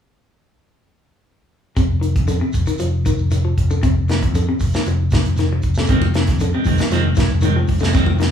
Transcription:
1.76 fingered electric bass F1, clean electric guitar C3, kick, closed hi-hat, shekere
2.01 clean electric guitar D#3, closed hi-hat, shekere
2.15 fingered electric bass F2, kick, closed hi-hat, shekere
2.27 clean electric guitar D3, closed hi-hat, shekere
2.41 clean electric guitar C3
2.53 fingered electric bass F1, kick, closed hi-hat, shekere
2.66 clean electric guitar D#3, closed hi-hat, shekere
2.78 fingered electric bass F1, clean electric guitar F3, closed hi-hat, shekere
3.05 clean electric guitar D#3, kick, closed hi-hat, shekere
3.19 fingered electric bass F1, shekere
3.31 muted clean electric guitar stroke, closed hi-hat, shekere
3.45 clean electric guitar F3
3.57 fingered electric bass F1, kick, closed hi-hat, shekere
3.70 clean electric guitar D3, shekere
3.83 fingered electric bass F1, clean electric guitar C3, kick, closed hi-hat, shekere
4.08 clean electric guitar D#3, snare, closed hi-hat, shekere
4.21 fingered electric bass F2, kick, closed hi-hat, shekere
4.35 clean electric guitar D3, closed hi-hat, shekere
4.49 clean electric guitar C3
4.59 fingered electric bass F1, kick, open hi-hat, shekere
4.74 clean electric guitar D#3, snare, shekere
4.86 fingered electric bass F1, muted clean electric guitar stroke, closed hi-hat, shekere
5.11 clean electric guitar D#3, kick, snare, closed hi-hat, shekere
5.24 fingered electric bass F1, closed hi-hat, shekere
5.36 clean electric guitar D#3, snare, closed hi-hat, shekere
5.53 muted clean electric guitar stroke
5.62 fingered electric bass F1, kick, closed hi-hat, shekere
5.74 snare, shekere
5.79 clean electric guitar D3
5.87 fingered electric bass F1, clean electric guitar C3 D#3 G#3 C4, kick, closed hi-hat, shekere
6.02 muted clean electric guitar stroke, high conga
6.14 clean electric guitar D#3, muted clean electric guitar stroke, snare, closed hi-hat, shekere
6.27 fingered electric bass F2, kick, snare, closed hi-hat, shekere
6.39 clean electric guitar D3, muted clean electric guitar stroke, closed hi-hat, shekere
6.54 clean electric guitar C3 G#3 C4
6.64 fingered electric bass F1, clean electric guitar D#3 G#3 C4, kick, open hi-hat, high conga, shekere
6.77 clean electric guitar D#3, muted clean electric guitar stroke, snare, closed hi-hat, shekere
6.90 fingered electric bass F1, clean electric guitar D#3 F3 G#3 C4, snare, closed hi-hat, shekere
7.04 muted clean electric guitar stroke, high conga
7.15 clean electric guitar D#3, muted clean electric guitar stroke, kick, snare, closed hi-hat, high conga, shekere
7.30 fingered electric bass F1, shekere
7.41 clean electric guitar D#3 G#3, closed hi-hat, high conga, shekere
7.45 clean electric guitar C4
7.56 clean electric guitar F3, muted clean electric guitar stroke
7.67 fingered electric bass F1, muted clean electric guitar stroke, kick, open hi-hat, high conga, shekere
7.79 clean electric guitar D3 G#3 C4, snare, shekere
7.92 fingered electric bass F1, clean electric guitar C3 D#3 G#3, kick, snare, closed hi-hat, shekere
7.96 clean electric guitar C4
8.06 muted clean electric guitar stroke, high conga
8.18 clean electric guitar D#3, muted clean electric guitar stroke, snare, closed hi-hat, shekere

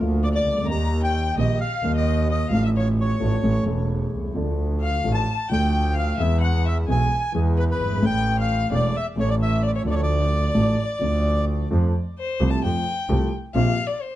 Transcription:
0.00 grand piano D2 D3 F3 A#3 F4, double bass D2
0.23 violin D5, bandoneon D5
0.32 violin D5, bandoneon D5
0.46 double bass C#2
0.51 grand piano C2
0.56 grand piano C#2
0.63 grand piano D2 D#3, violin A#5
0.68 grand piano D#2 D#3 G3 A#3 G4, double bass D#2, bandoneon A#5
1.03 violin G5, bandoneon G5
1.37 double bass A#1, grand piano A#1 A#2 D#3 G3 A#3 G4, violin D#5, bandoneon D#5
1.61 bandoneon F5, violin F5
1.83 double bass D#2, grand piano D#2 D#3 G3 A#3 G4
1.96 violin D#5, bandoneon D#5
2.28 violin D#5, bandoneon D#5
2.49 double bass A1, grand piano A1 A2 F3 A3 D4, violin F5
2.54 grand piano A4, bandoneon F5
2.64 violin E5, bandoneon E5
2.76 violin C#5, bandoneon C#5
2.98 violin C#5, bandoneon C#5
3.20 grand piano A1 A2 F3 A3 D4 A4, double bass A1
3.43 grand piano A1 A2 E3 A3 C#4 A4, double bass A1
3.64 grand piano E1 E2 E3 A3 C#4 A4, double bass E1
4.15 double bass C2
4.20 grand piano B1
4.26 grand piano C2
4.31 grand piano C#2 F3
4.35 grand piano D2 D3 A3 D4 A4, double bass D2
4.81 violin F5
4.85 bandoneon F5
5.04 grand piano A1 A2 F3 A3 D4 A4, double bass A1
5.12 violin A5, bandoneon A5
5.49 double bass D2, grand piano D2 D3 F3 A3 D4, violin G5
5.53 grand piano A4, bandoneon G5
5.95 violin F5
5.99 bandoneon F5
6.17 grand piano E2 E3 G#3 B3, double bass E2, violin E5, bandoneon E5
6.21 grand piano G#4
6.41 violin F#5, bandoneon F#5
6.66 violin E5, bandoneon E5
6.88 grand piano B1 B2 E3 G#3 B3 G#4, double bass B1, violin G#5, bandoneon G#5
7.33 grand piano E2 E3 G#3 B3 G#4, double bass E2
7.57 violin B4, bandoneon B4
7.69 violin B4, bandoneon B4
7.80 double bass G1
7.86 grand piano F#1
7.92 grand piano G1
7.97 grand piano G#1 E3
8.02 grand piano A1 A2 A3 C#4 A4, double bass A1
8.06 bandoneon G5, violin G5
8.39 violin F5, bandoneon F5
8.71 double bass E1, grand piano E1 E2 E3 A3 C#4 A4, violin D5, bandoneon D5
8.96 violin E5, bandoneon E5
9.16 grand piano A1 A2 E3 A3 C#4, double bass A1, violin C#5
9.20 grand piano A4, bandoneon C#5
9.28 violin D5, bandoneon D5
9.42 violin E5, bandoneon E5
9.63 violin D5
9.67 bandoneon D5
9.75 violin C#5, bandoneon C#5
9.84 double bass D2, grand piano D2 D3 F3 A3 D4, violin D5
9.88 grand piano A4, violin C#5, bandoneon D5
9.95 bandoneon C#5
10.02 violin D5, bandoneon D5
10.54 grand piano A1 A2 F3 A3 D4 A4, double bass A1
10.99 grand piano D2 D3 F3 A3 D4, double bass D2
11.03 grand piano A4
11.71 grand piano F2 F3 A3 C4 A4, double bass F2
12.19 violin C5
12.40 grand piano C2 C3 F3 A3 C4 A4, double bass C2
12.50 violin A5
12.64 double bass F2, grand piano F2 F3 A3 C4 A4, violin G5
13.09 grand piano C2 C3 F3 A3 C4 A4, double bass C2
13.55 double bass A#1, grand piano A#1 A#2 C3 F3 A#3 F4, violin F5
13.87 violin D5
14.02 violin C5

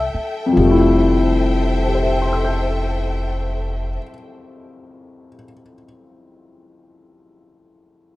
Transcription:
Already playing: upright bass C2, grand piano A3 C4 D4 E4 G4, string section A4 E5 G5, alto saxophone E5
0.14 muted upright bass stroke
0.46 grand piano F2
0.53 grand piano F3
0.57 upright bass F1, grand piano G3, string section A4 C5 E5 G5
0.65 grand piano A3
0.71 grand piano E4
1.88 grand piano G4
1.95 grand piano C5
2.04 grand piano E5
2.12 grand piano G5
2.22 grand piano C6
2.33 grand piano E6
2.45 grand piano G6

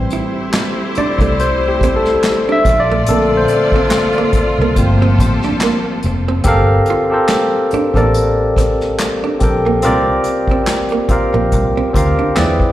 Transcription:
Already playing: tine electric piano E3 G3 C4, string section A3 E4 G4 C5
0.11 hollow-body jazz guitar E4, closed hi-hat
0.53 muted hollow-body jazz guitar stroke, snare, clap, closed hi-hat
0.95 hollow-body jazz guitar D4, tine electric piano D5, muted fingered electric bass stroke, closed hi-hat
1.19 fingered electric bass C2, hollow-body jazz guitar A3, kick, closed hi-hat
1.40 tine electric piano C5, closed hi-hat
1.68 tine electric piano G4
1.81 hollow-body jazz guitar C4, kick, closed hi-hat
1.96 tine electric piano A4
2.05 snare
2.23 snare, clap, closed hi-hat
2.49 hollow-body jazz guitar D4, tine electric piano E5
2.65 fingered electric bass A#1, string section A#2 F4 A4 D5, kick, closed hi-hat
2.69 muted hollow-body jazz guitar stroke
2.80 tine electric piano D5
2.91 hollow-body jazz guitar A3
3.06 fingered electric bass A#1, tine electric piano D3 A3 C4 A4, closed hi-hat
3.10 hollow-body jazz guitar A#3
3.37 tine electric piano C5
3.48 closed hi-hat
3.53 muted hollow-body jazz guitar stroke
3.72 hollow-body jazz guitar C4, kick
3.91 snare, clap, closed hi-hat
4.13 closed hi-hat
4.18 hollow-body jazz guitar A#3
4.33 muted fingered electric bass stroke, kick, closed hi-hat
4.38 muted hollow-body jazz guitar stroke
4.58 fingered electric bass C2, hollow-body jazz guitar A#3
4.76 fingered electric bass G1, tine electric piano F3 A3 A#3 C4, string section G3 G4 A4 C5, kick, closed hi-hat
5.02 hollow-body jazz guitar C4
5.19 fingered electric bass A1, muted hollow-body jazz guitar stroke, kick, closed hi-hat
5.42 hollow-body jazz guitar D4, snare
5.60 hollow-body jazz guitar A#3, snare, clap, closed hi-hat
6.03 fingered electric bass F1, muted hollow-body jazz guitar stroke, closed hi-hat
6.28 hollow-body jazz guitar C4
6.44 fingered electric bass G1, tine electric piano C4 G4 A4 A#4, kick, closed hi-hat
6.48 tine electric piano F5
6.86 closed hi-hat
6.90 hollow-body jazz guitar F4
7.10 tine electric piano C4 G4 A4 A#4 C5
7.29 muted hollow-body jazz guitar stroke, snare, clap, closed hi-hat
7.71 hollow-body jazz guitar D4, muted fingered electric bass stroke, closed hi-hat
7.94 fingered electric bass A1, hollow-body jazz guitar A#3, tine electric piano C4 G4 A4 A#4 D5, kick, closed hi-hat
8.14 closed hi-hat
8.56 hollow-body jazz guitar C4, kick, snare, closed hi-hat
8.80 snare
8.99 snare, clap, closed hi-hat
9.24 hollow-body jazz guitar D4
9.40 fingered electric bass A#1, tine electric piano C4 G4 A4 A#4, muted hollow-body jazz guitar stroke, kick, closed hi-hat
9.44 tine electric piano G5
9.66 hollow-body jazz guitar A#3
9.82 fingered electric bass C2, tine electric piano C4 F4 G4 A#4, hollow-body jazz guitar C4, closed hi-hat
9.86 tine electric piano D5
10.24 closed hi-hat
10.28 muted hollow-body jazz guitar stroke
10.48 hollow-body jazz guitar C4, kick
10.67 snare, clap, closed hi-hat
10.89 hollow-body jazz guitar A#3, closed hi-hat
11.09 tine electric piano C4 F4 G4 A#4, muted fingered electric bass stroke, muted hollow-body jazz guitar stroke, kick, closed hi-hat
11.13 tine electric piano F5
11.34 fingered electric bass A#1, hollow-body jazz guitar A#3
11.52 fingered electric bass C2, kick, closed hi-hat
11.77 hollow-body jazz guitar C4
11.93 fingered electric bass D2, tine electric piano C4 F4 G4 A#4, muted hollow-body jazz guitar stroke, kick, closed hi-hat
11.97 tine electric piano F5
12.19 hollow-body jazz guitar D4
12.35 fingered electric bass E2, hollow-body jazz guitar B3, tine electric piano C4 E4 G#4 B4, snare, clap, closed hi-hat
12.39 tine electric piano D5
12.60 kick

